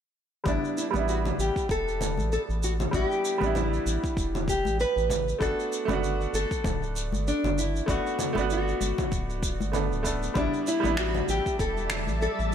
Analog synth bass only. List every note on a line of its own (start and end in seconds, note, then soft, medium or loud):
0.46 0.58 A1 medium
0.94 1.32 A1 medium
1.39 1.51 A1 medium
1.69 2.19 E1 medium
2.18 2.38 A1 medium
2.49 2.86 A1 medium
2.93 3.05 A1 medium
3.42 3.79 A1 medium
3.86 3.98 A1 medium
4.17 4.67 E1 medium
4.65 4.85 A1 medium
4.96 5.34 A1 medium
5.41 5.53 G1 loud
5.89 6.27 G1 medium
6.33 6.46 G1 medium
6.65 7.14 D1 medium
7.12 7.32 G1 loud
7.44 7.81 G1 medium
7.88 8.00 G1 medium
8.37 8.74 G1 medium
8.81 8.93 G1 medium
9.12 9.62 D1 medium
9.60 9.93 G1 loud
9.91 10.29 D1 loud
10.36 10.48 A1 medium
10.85 11.22 A1 medium
11.29 11.41 A1 medium
11.59 12.10 E1 medium
12.08 12.28 A1 loud
12.39 12.55 A1 medium